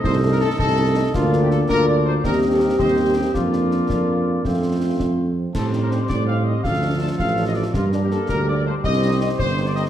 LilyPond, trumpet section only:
\new Staff \with { instrumentName = "Trumpet section" } { \time 6/8 \key bes \major \tempo 4. = 109 c''8. bes'16 a'8 a'4. | f'8. g'16 a'8 bes'8 d''8 c''8 | bes'8. a'16 bes'8 c''4 g'8 | f'2.~ |
f'4. r4. | a'8. bes'16 c''8 d''8 f''8 ees''8 | f''4 a''8 f''8. ees''16 d''8 | f'8. g'16 a'8 bes'8 d''8 c''8 |
ees''4 ees''8 c''8. d''16 ees''8 | }